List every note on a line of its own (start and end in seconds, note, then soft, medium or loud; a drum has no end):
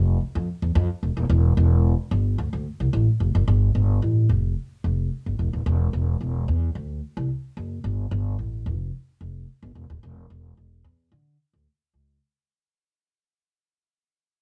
0.00 0.16 F1 loud
0.21 muted upright bass stroke soft
0.35 0.46 F2 loud
0.62 0.73 E2 loud
0.75 0.88 F2 loud
1.03 1.15 E1 medium
1.17 1.28 D#1 medium
1.30 1.53 E1 loud
1.57 1.92 E1 loud
2.11 2.34 G1 loud
2.38 2.51 D2 medium
2.53 2.64 D2 medium
2.80 2.91 C2 medium
2.93 3.05 A1 loud
3.20 3.33 F1 medium
3.35 3.46 F#1 loud
3.48 3.71 G1 loud
3.75 3.98 G1 loud
4.02 4.25 A1 medium
4.29 4.53 F1 loud
4.84 5.07 F1 medium
5.26 5.37 G1 medium
5.39 5.51 E1 medium
5.53 5.64 D#1 medium
5.66 5.89 E1 loud
5.93 6.16 E1 loud
6.21 6.44 E1 medium
6.48 6.71 E2 loud
6.75 6.98 D2 loud
7.17 7.28 C2 loud
7.57 7.80 F#1 medium
7.84 8.07 G1 loud
8.11 8.34 G1 loud
8.39 8.67 A1 medium
8.66 8.89 F1 medium
9.21 9.44 F1 medium
9.63 9.73 G1 loud
9.75 9.88 E1 medium
9.90 10.01 D#1 loud
10.03 10.26 E1 loud
10.30 10.53 E1 loud
10.57 10.80 E1 medium
10.84 11.07 E2 medium
11.12 11.35 D3 loud
11.53 11.64 D2 medium
11.94 12.17 C#2 medium